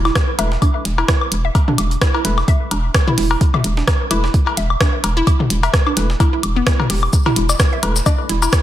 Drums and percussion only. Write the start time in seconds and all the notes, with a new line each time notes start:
0.05 snare, low woodblock
0.15 kick, cross-stick, snare, closed hi-hat
0.39 closed hi-hat, cowbell, low woodblock
0.52 snare
0.62 kick, closed hi-hat, low woodblock
0.85 snare, closed hi-hat
0.98 cowbell, low woodblock
1.08 kick, cross-stick, snare, closed hi-hat
1.21 low woodblock
1.32 closed hi-hat
1.55 kick, closed hi-hat, cowbell, low woodblock
1.68 mid tom
1.78 closed hi-hat, low woodblock
1.91 closed hi-hat
2.01 kick, cross-stick, snare, closed hi-hat
2.14 cowbell, low woodblock
2.25 snare, closed hi-hat
2.38 snare, low woodblock
2.48 kick, closed hi-hat
2.71 closed hi-hat, cowbell, low woodblock
2.94 kick, cross-stick, snare, closed hi-hat, low woodblock
3.07 mid tom
3.18 snare, closed hi-hat, open hi-hat
3.31 cowbell, low woodblock
3.41 kick, closed hi-hat
3.54 mid tom, low woodblock
3.64 closed hi-hat
3.77 snare
3.88 kick, cross-stick, snare, closed hi-hat, cowbell, low woodblock
4.11 closed hi-hat, low woodblock
4.24 snare
4.34 kick, closed hi-hat
4.47 cowbell, low woodblock
4.57 snare, closed hi-hat
4.70 low woodblock
4.81 kick, cross-stick, snare, closed hi-hat
5.04 closed hi-hat, cowbell, low woodblock
5.27 kick, closed hi-hat, low woodblock
5.40 mid tom
5.50 closed hi-hat
5.63 closed hi-hat, cowbell, low woodblock
5.74 kick, cross-stick, snare, closed hi-hat
5.87 low woodblock
5.97 snare, closed hi-hat
6.10 snare
6.20 kick, closed hi-hat, cowbell, low woodblock
6.43 closed hi-hat, low woodblock
6.67 kick, cross-stick, snare, closed hi-hat
6.80 mid tom, cowbell, low woodblock
6.90 snare, closed hi-hat, open hi-hat
7.03 low woodblock
7.13 kick, closed hi-hat, cabasa
7.26 mid tom, cowbell, low woodblock
7.36 closed hi-hat
7.49 snare, high bongo, cabasa, low woodblock
7.60 kick, cross-stick, snare, closed hi-hat, cabasa
7.83 closed hi-hat, cowbell, low woodblock
7.96 snare, cabasa
8.06 kick, closed hi-hat, high bongo, cabasa, low woodblock
8.29 snare, closed hi-hat
8.42 cowbell, cabasa, low woodblock
8.53 kick, cross-stick, snare, closed hi-hat, cabasa